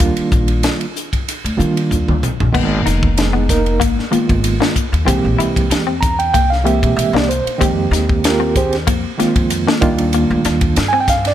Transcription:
0.00 upright bass D#2, reed electric piano D#3 G3 A#3 D4 F4, kick, hi-hat pedal, ride
0.17 muted upright bass stroke, ride
0.32 upright bass A#1, kick, hi-hat pedal
0.48 ride
0.63 snare, hi-hat pedal, ride
0.81 ride
0.96 hi-hat pedal
1.13 kick, ride
1.28 hi-hat pedal, ride
1.44 upright bass D2, ride
1.57 reed electric piano D#3 G3 A#3 D4 F4, upright bass D#3, hi-hat pedal
1.77 ride
1.91 upright bass D#2, kick, hi-hat pedal
2.08 upright bass D2, mid tom
2.23 upright bass C2, hi-hat pedal, mid tom
2.40 upright bass A#1, floor tom
2.53 upright bass G#1, reed electric piano D#3 G#3 A#3 B3 D#4, clean electric guitar B3, kick, crash
2.86 upright bass F1, clean electric guitar D#4, snare, hi-hat pedal, ride
3.03 kick
3.17 reed electric piano G#3 B3 D#4 G#4, snare, hi-hat pedal, ride
3.33 clean electric guitar B3
3.49 reed electric piano A#3 D#4 A#4, kick, snare, hi-hat pedal, ride
3.66 ride
3.80 upright bass G#1, clean electric guitar A#3, kick, hi-hat pedal, ride
3.99 snare
4.11 reed electric piano D#3 G#3 A#3 B3 F4, clean electric guitar A#3, muted upright bass stroke, hi-hat pedal, ride
4.29 upright bass G#1, kick, ride
4.44 hi-hat pedal, ride
4.60 clean electric guitar A#3, snare
4.76 kick, hi-hat pedal, ride
4.93 upright bass D#2, ride
5.05 upright bass C2, reed electric piano E3 G#3 A#3 C4 G4, clean electric guitar C4, kick, hi-hat pedal, ride
5.24 upright bass A#1
5.39 upright bass C2, clean electric guitar E4, hi-hat pedal, ride
5.56 kick, ride
5.70 upright bass E2, snare, hi-hat pedal, ride
5.87 clean electric guitar C4
6.01 reed electric piano A#5, kick, hi-hat pedal, ride
6.19 reed electric piano G5, ride
6.34 upright bass C2, clean electric guitar A#3, reed electric piano G5, kick, hi-hat pedal, ride
6.50 reed electric piano F5, snare
6.64 reed electric piano E3 G#3 A#3 C4 G4 E5, clean electric guitar A#3, hi-hat pedal, ride
6.83 upright bass C3, kick, ride
6.96 upright bass C2, reed electric piano E5, hi-hat pedal, ride
7.13 upright bass C2, clean electric guitar A#3, reed electric piano D5, snare
7.29 reed electric piano C5, hi-hat pedal, ride
7.45 muted upright bass stroke, ride
7.58 upright bass F2, reed electric piano D#3 G#3 A#3 C4 G4, clean electric guitar C4, kick, hi-hat pedal, ride
7.91 upright bass D#2, clean electric guitar D#4, snare, hi-hat pedal, ride
8.09 kick
8.24 reed electric piano A#3 F4 G4 A#4, snare, hi-hat pedal, ride
8.40 clean electric guitar C4
8.56 reed electric piano C4 G4 G#4 C5, kick, hi-hat pedal, ride
8.73 snare, ride
8.87 upright bass F2, clean electric guitar A#3, kick, hi-hat pedal, ride
9.18 reed electric piano D#3 G#3 A#3 C4 F4, clean electric guitar A#3, muted upright bass stroke, snare, hi-hat pedal, ride
9.36 upright bass F2, kick, ride
9.50 hi-hat pedal, ride
9.67 clean electric guitar A#3, snare
9.81 upright bass D#2, reed electric piano D#3 G3 A#3 D4 F4, kick, hi-hat pedal, ride
9.98 ride
10.13 clean electric guitar A#3, hi-hat pedal, ride
10.30 upright bass D2
10.45 upright bass D#2, clean electric guitar D4, snare, hi-hat pedal, ride
10.61 kick, ride
10.76 upright bass G2, snare, hi-hat pedal, ride
10.88 reed electric piano G#5
10.93 clean electric guitar C4
11.00 reed electric piano G5
11.08 reed electric piano F5, kick, snare, hi-hat pedal, ride
11.25 reed electric piano D5, snare, ride

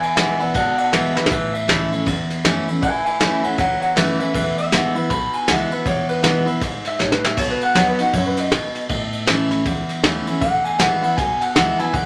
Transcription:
Already playing: steel-string acoustic guitar E2
0.01 clean electric guitar E5 G#5, muted upright bass stroke, ride
0.16 upright bass B1, steel-string acoustic guitar E3 G#3 B3 E4, clean electric guitar E5 G#5, snare, ride
0.39 upright bass B1, steel-string acoustic guitar B3 E4, clean electric guitar D5 F#5, ride
0.54 upright bass G#1, steel-string acoustic guitar B2, clean electric guitar D5 F#5, kick, snare, ride
0.78 clean electric guitar D5 F#5, muted upright bass stroke, ride
0.92 upright bass G#1, steel-string acoustic guitar E3 G#3 B3 E4, clean electric guitar B4 E5, snare, ride
1.15 steel-string acoustic guitar B3 E4, clean electric guitar B4 E5, muted upright bass stroke, snare
1.26 snare
1.30 upright bass A1, steel-string acoustic guitar A2, clean electric guitar B4 E5, kick, ride
1.53 clean electric guitar E5, ride
1.68 upright bass C#2, steel-string acoustic guitar E3 A3 C#4 E4, snare, ride
1.92 steel-string acoustic guitar C#4 E4, ride
2.06 steel-string acoustic guitar E2, upright bass E2, kick, snare, ride
2.30 muted upright bass stroke, snare, ride
2.44 upright bass F#2, steel-string acoustic guitar E3 A3 C#4 E4, snare, ride
2.68 steel-string acoustic guitar C#4 E4, muted upright bass stroke, ride
2.82 upright bass A1, steel-string acoustic guitar A2, clean electric guitar E5 G#5, kick, ride
3.05 clean electric guitar E5 G#5, muted upright bass stroke, ride
3.20 upright bass E2, steel-string acoustic guitar E3 A3 C#4 E4, clean electric guitar E5 G#5, snare, ride
3.43 upright bass E2, steel-string acoustic guitar C#4 E4, clean electric guitar C#5 F#5, ride
3.58 upright bass C#2, steel-string acoustic guitar E2, clean electric guitar C#5 F#5, kick, snare, ride
3.80 clean electric guitar C#5 F#5, muted upright bass stroke, ride
3.96 upright bass F#1, steel-string acoustic guitar E3 A3 C#4 E4, clean electric guitar B4 E5, snare, ride
4.19 steel-string acoustic guitar C#4 E4, clean electric guitar B4 E5, muted upright bass stroke, ride
4.34 upright bass E1, steel-string acoustic guitar E2, clean electric guitar B4 E5, kick, ride
4.58 clean electric guitar E5, ride
4.72 upright bass G#1, steel-string acoustic guitar E3 G#3 B3 E4, snare, ride
4.95 steel-string acoustic guitar B3 E4, muted upright bass stroke, ride
5.10 upright bass B1, steel-string acoustic guitar B2, clean electric guitar B5, kick, snare, ride
5.33 clean electric guitar G#5, ride
5.48 upright bass C#2, steel-string acoustic guitar E3 G#3 B3 E4, clean electric guitar F#5, snare, ride
5.71 steel-string acoustic guitar B3 E4, clean electric guitar E5, ride
5.86 upright bass E1, steel-string acoustic guitar E2, clean electric guitar C#5, kick, ride
6.09 clean electric guitar B4, muted upright bass stroke, ride
6.23 upright bass B1, steel-string acoustic guitar E3 G#3 B3 E4, clean electric guitar B4, snare, ride
6.46 steel-string acoustic guitar B3 E4, ride
6.61 upright bass G#1, steel-string acoustic guitar G#2, kick, snare, ride
6.85 clean electric guitar E5, snare, ride
6.99 upright bass A1, steel-string acoustic guitar A2, clean electric guitar C#5, snare
7.12 clean electric guitar B4, snare
7.22 clean electric guitar E5, muted upright bass stroke, snare
7.37 upright bass B1, steel-string acoustic guitar B2, clean electric guitar C#5, kick, ride, crash
7.50 clean electric guitar B4
7.61 clean electric guitar F#5, ride
7.75 upright bass D#2, steel-string acoustic guitar F#3 B3 D#4 F#4, clean electric guitar C#5, snare, ride
7.88 clean electric guitar B4
7.98 steel-string acoustic guitar D#4 F#4, clean electric guitar F#5, muted upright bass stroke, snare, ride
8.13 steel-string acoustic guitar F#2, upright bass F#2, clean electric guitar C#5, kick, ride
8.26 clean electric guitar B4
8.37 clean electric guitar D#5, snare, ride
8.52 upright bass G#1, steel-string acoustic guitar B2, snare, ride
8.75 muted upright bass stroke, snare, ride
8.89 upright bass A1, steel-string acoustic guitar A2, kick, ride
9.13 ride
9.27 upright bass E2, steel-string acoustic guitar E3 A3 C#4 E4, snare, ride
9.50 upright bass E2, steel-string acoustic guitar C#4 E4, snare, ride
9.66 upright bass C#2, steel-string acoustic guitar E2, kick, snare, ride
9.89 snare, ride
10.03 upright bass D#2, steel-string acoustic guitar E3 A3 C#4 E4, snare, ride
10.27 steel-string acoustic guitar C#4 E4, muted upright bass stroke, ride
10.41 upright bass E1, steel-string acoustic guitar E2, clean electric guitar F#5, kick, ride
10.65 clean electric guitar G#5, muted upright bass stroke, ride
10.79 upright bass G#1, steel-string acoustic guitar E3 G#3 B3 E4, clean electric guitar F#5, snare, ride
11.02 steel-string acoustic guitar B3 E4, clean electric guitar F#5, muted upright bass stroke, ride
11.17 upright bass B1, steel-string acoustic guitar B2, clean electric guitar G#5, kick, snare, ride
11.40 clean electric guitar F#5, muted upright bass stroke, snare, ride
11.55 upright bass C#2, steel-string acoustic guitar E3 G#3 B3 E4, clean electric guitar F#5, snare, ride
11.79 steel-string acoustic guitar B3 E4, clean electric guitar G#5, snare, ride
11.93 upright bass E1, steel-string acoustic guitar E2, clean electric guitar F#5, kick, ride

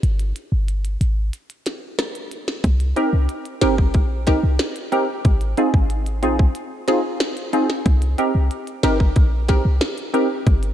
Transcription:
0.03 808-style bass G1, closed hi-hat
0.19 closed hi-hat
0.36 closed hi-hat
0.52 808-style bass G1
0.68 closed hi-hat
0.85 closed hi-hat
1.01 808-style bass G#1, closed hi-hat
1.33 closed hi-hat
1.50 closed hi-hat
1.66 snare, closed hi-hat
1.99 cross-stick, snare, closed hi-hat
2.15 closed hi-hat
2.31 closed hi-hat
2.48 snare
2.64 808-style bass C2, kick, closed hi-hat
2.80 closed hi-hat
2.96 synth stab C4 D#4 G4 A#4, closed hi-hat
3.13 808-style bass C2
3.29 closed hi-hat
3.45 closed hi-hat
3.61 808-style bass G1, synth stab C4 D#4 G4 A#4, snare, closed hi-hat
3.78 kick
3.94 808-style bass A#1, kick, closed hi-hat
4.27 synth stab C4 D#4 G4 A#4, kick, snare, closed hi-hat
4.43 808-style bass C2
4.59 snare, closed hi-hat
4.76 closed hi-hat
4.92 synth stab C4 D#4 G4 A#4, closed hi-hat
5.25 808-style bass G#1, kick, closed hi-hat
5.41 closed hi-hat
5.57 synth stab C4 D#4 F4 G#4, closed hi-hat
5.74 808-style bass G#1, kick
5.90 closed hi-hat
6.06 closed hi-hat
6.22 808-style bass A#1, synth stab C4 D#4 F4 G#4, closed hi-hat
6.39 kick
6.55 closed hi-hat
6.88 synth stab C4 D#4 F4 G#4, snare, closed hi-hat
7.20 snare, closed hi-hat
7.37 closed hi-hat
7.53 synth stab C4 D#4 F4 G#4, closed hi-hat
7.70 snare
7.86 808-style bass C2, kick, closed hi-hat
8.02 closed hi-hat
8.18 synth stab C4 D#4 G4 A#4, closed hi-hat
8.35 808-style bass C2
8.51 closed hi-hat
8.67 closed hi-hat
8.83 808-style bass G1, synth stab C4 D#4 G4 A#4, snare, closed hi-hat
9.00 kick
9.16 808-style bass A#1, kick, closed hi-hat
9.48 synth stab C4 D#4 G4 A#4, kick, snare, closed hi-hat
9.65 808-style bass C2
9.81 snare, closed hi-hat
9.98 closed hi-hat
10.14 synth stab C4 D#4 G4 A#4, closed hi-hat
10.47 808-style bass G1, kick, closed hi-hat
10.63 closed hi-hat

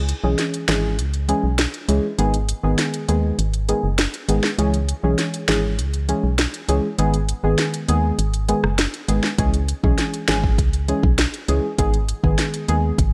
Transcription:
Already playing: fm bass C#2
0.09 closed hi-hat
0.23 fm bass B1, synth stab E3 G#3 C#4 G#4
0.39 snare, closed hi-hat
0.54 closed hi-hat
0.68 fm bass G#1, synth stab E3 G#3 C#4 G#4, snare, closed hi-hat
0.99 fm bass C#2, closed hi-hat
1.14 closed hi-hat
1.28 synth stab E3 G#3 C#4 G#4, closed hi-hat
1.44 fm bass B1
1.58 snare, closed hi-hat
1.74 closed hi-hat
1.88 fm bass C#2, synth stab E3 G#3 C#4 G#4, closed hi-hat
2.18 fm bass G#1, synth stab D#3 G#3 B3 G#4, closed hi-hat
2.34 closed hi-hat
2.49 closed hi-hat
2.63 fm bass G#1, synth stab D#3 G#3 B3 G#4
2.78 snare, closed hi-hat
2.94 closed hi-hat
3.08 fm bass D#2, synth stab D#3 G#3 B3 G#4, closed hi-hat
3.39 fm bass G#1, closed hi-hat
3.54 closed hi-hat
3.68 synth stab D#3 G#3 B3 G#4, closed hi-hat
3.84 fm bass F#1
3.98 snare, closed hi-hat
4.14 closed hi-hat
4.28 fm bass G#1, synth stab D#3 G#3 B3 G#4, closed hi-hat
4.43 snare
4.58 fm bass C#2, synth stab E3 G#3 C#4 G#4, closed hi-hat
4.74 closed hi-hat
4.89 closed hi-hat
5.03 fm bass B1, synth stab E3 G#3 C#4 G#4
5.18 snare, closed hi-hat
5.34 closed hi-hat
5.48 fm bass G#1, synth stab E3 G#3 C#4 G#4, snare, closed hi-hat
5.79 fm bass C#2, closed hi-hat
5.94 closed hi-hat
6.08 synth stab E3 G#3 C#4 G#4, closed hi-hat
6.24 fm bass B1
6.38 snare, closed hi-hat
6.54 closed hi-hat
6.68 fm bass C#2, synth stab E3 G#3 C#4 G#4, closed hi-hat
6.98 fm bass G#1, synth stab D#3 G#3 B3 G#4, closed hi-hat
7.14 closed hi-hat
7.29 closed hi-hat
7.43 fm bass G#1, synth stab D#3 G#3 B3 G#4
7.58 snare, closed hi-hat
7.74 closed hi-hat
7.88 fm bass D#2, synth stab D#3 G#3 B3 G#4, closed hi-hat
8.19 fm bass G#1, closed hi-hat
8.34 closed hi-hat
8.48 synth stab D#3 G#3 B3 G#4, closed hi-hat
8.64 fm bass F#1, cross-stick
8.78 snare, closed hi-hat
8.94 closed hi-hat
9.08 fm bass G#1, synth stab D#3 G#3 B3 G#4, closed hi-hat
9.23 snare
9.38 fm bass C#2, synth stab E3 G#3 C#4 G#4, kick, closed hi-hat
9.54 closed hi-hat
9.69 closed hi-hat
9.83 fm bass B1, synth stab E3 G#3 C#4 G#4, kick
9.98 snare, closed hi-hat
10.14 closed hi-hat
10.28 fm bass G#1, synth stab E3 G#3 C#4 G#4, snare, closed hi-hat
10.44 kick
10.58 fm bass C#2, kick, closed hi-hat
10.73 closed hi-hat
10.88 synth stab E3 G#3 C#4 G#4, closed hi-hat
11.03 fm bass B1, kick
11.18 snare, closed hi-hat
11.34 closed hi-hat
11.48 fm bass C#2, synth stab E3 G#3 C#4 G#4, closed hi-hat
11.78 fm bass G#1, synth stab D#3 G#3 B3 G#4, kick, closed hi-hat
11.94 closed hi-hat
12.09 closed hi-hat
12.23 fm bass G#1, synth stab D#3 G#3 B3 G#4, kick
12.38 snare, closed hi-hat
12.54 closed hi-hat
12.68 fm bass D#2, synth stab D#3 G#3 B3 G#4, closed hi-hat
12.98 fm bass G#1, kick, closed hi-hat

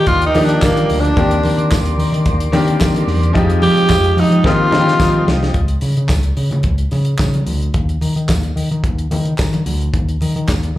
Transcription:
Already playing: grand piano F3 A#3 D4 D#4 G4, tonewheel organ A#4 D5 G5 D6
0.07 picked electric bass D#2, tenor saxophone F4, kick, closed hi-hat, muted conga
0.21 closed hi-hat
0.26 tenor saxophone D#4
0.34 picked electric bass D#3, grand piano F3 A#3 D4 D#4 G4, open hi-hat, muted conga
0.45 tenor saxophone D4
0.49 closed hi-hat
0.62 picked electric bass D#3, tenor saxophone A#3, kick, snare, clap, closed hi-hat, tambourine, high conga
0.77 closed hi-hat, high conga
0.89 picked electric bass D2, open hi-hat, high conga
1.00 tenor saxophone D4
1.05 closed hi-hat
1.16 picked electric bass D#2, grand piano D#3 A#3 C4 D4 G4, tonewheel organ C6, kick, closed hi-hat, muted conga
1.31 closed hi-hat
1.43 picked electric bass D#3, open hi-hat, muted conga
1.58 picked electric bass D#3, closed hi-hat
1.72 picked electric bass D#2, kick, snare, clap, closed hi-hat, tambourine, high conga
1.86 closed hi-hat
1.98 picked electric bass D#3, open hi-hat
2.12 picked electric bass D#3, closed hi-hat
2.26 picked electric bass D#2, kick, closed hi-hat, muted conga
2.40 closed hi-hat
2.52 grand piano D#3 A#3 C4 D4 G4, picked electric bass D#3, open hi-hat, muted conga
2.68 closed hi-hat
2.81 picked electric bass D#3, kick, snare, clap, closed hi-hat, tambourine, high conga
2.95 closed hi-hat, high conga
3.07 picked electric bass E2, open hi-hat, high conga
3.23 closed hi-hat
3.33 picked electric bass F2, grand piano F3 G3 C4 D#4 G4, tonewheel organ G#3 F5 G5 D#6, kick, closed hi-hat, muted conga
3.40 grand piano G#3
3.50 closed hi-hat
3.62 picked electric bass F3, tenor saxophone G4, open hi-hat, muted conga
3.77 picked electric bass F3, closed hi-hat
3.89 picked electric bass F2, kick, snare, clap, closed hi-hat, tambourine, high conga
4.04 closed hi-hat
4.17 picked electric bass F3, tenor saxophone D#4, open hi-hat
4.31 picked electric bass F3, closed hi-hat
4.44 picked electric bass D#3, grand piano F3 A#3 C4 D#4 G4, tenor saxophone F4, tonewheel organ C5 D#6, kick, snare, muted conga
4.71 picked electric bass D#3, grand piano F3 A#3 C4 D#4 F4, snare, muted conga, low conga
4.79 grand piano G4
4.88 snare
5.00 picked electric bass D#3, kick, snare, tambourine, high conga
5.14 high conga
5.27 picked electric bass C2, snare, high conga
5.43 snare
5.54 picked electric bass C#2, kick, closed hi-hat, muted conga
5.68 closed hi-hat
5.81 picked electric bass C#3, open hi-hat, muted conga
5.97 picked electric bass C#3, closed hi-hat
6.09 picked electric bass C#2, kick, snare, clap, closed hi-hat, tambourine, high conga
6.23 closed hi-hat
6.37 picked electric bass C#3, open hi-hat
6.51 picked electric bass C#3, closed hi-hat, low conga
6.63 picked electric bass C#2, kick, closed hi-hat, muted conga
6.78 closed hi-hat
6.91 picked electric bass C#3, open hi-hat, muted conga
7.05 closed hi-hat
7.19 picked electric bass C#3, kick, snare, clap, closed hi-hat, tambourine, high conga
7.34 closed hi-hat, high conga
7.46 picked electric bass D2, open hi-hat, high conga
7.62 closed hi-hat
7.74 picked electric bass D#2, kick, closed hi-hat, muted conga
7.89 closed hi-hat
8.01 picked electric bass D#3, open hi-hat, muted conga
8.16 picked electric bass D#3, closed hi-hat
8.29 picked electric bass D#2, kick, snare, clap, closed hi-hat, tambourine, high conga
8.43 closed hi-hat
8.56 picked electric bass D#3, open hi-hat
8.71 picked electric bass D#3, closed hi-hat
8.84 picked electric bass D#2, kick, closed hi-hat, muted conga
8.99 closed hi-hat
9.11 picked electric bass D#3, open hi-hat, muted conga, low conga
9.25 closed hi-hat
9.38 picked electric bass D#3, kick, snare, clap, closed hi-hat, tambourine, high conga
9.53 closed hi-hat, high conga
9.66 picked electric bass D2, open hi-hat, high conga
9.81 closed hi-hat
9.94 picked electric bass D#2, kick, closed hi-hat, muted conga
10.09 closed hi-hat
10.21 picked electric bass D#3, open hi-hat, muted conga
10.36 picked electric bass D#3, closed hi-hat
10.48 picked electric bass D#2, kick, snare, clap, closed hi-hat, tambourine, high conga
10.63 closed hi-hat

